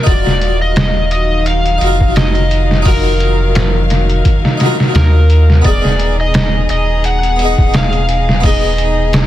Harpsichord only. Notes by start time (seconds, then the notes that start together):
0.03 D#4 F4
0.09 F#4 A#4
1.78 D#4 F4
1.83 F#4 A#4
2.82 D#4 F4
2.88 F#4 A#4
4.57 D#4 F4
4.63 F#4 A#4
5.62 B3 D#4
5.67 G#4 A#4
7.36 B3 D#4
7.42 G#4 D#5
8.41 B3 D#4
8.46 G#4 B4